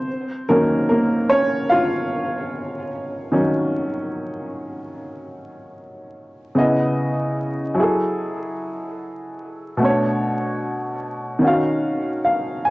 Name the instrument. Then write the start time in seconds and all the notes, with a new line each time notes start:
upright piano
Already playing: C4 C5
0.49 D#3 F#3 A#3 C#4 A#4
0.89 A#3 A#4
1.29 C#4 C#5
1.69 F4 F5
3.32 D#3 F#3 C#4
6.55 C#3 B3 E4 D#5
7.75 F#3 E4
7.80 G#4 A4
9.77 B2 A3
9.82 C#4 C#5
9.88 D4
11.39 D#3 C#4
11.44 F#4 F5
12.25 F5
12.65 G#5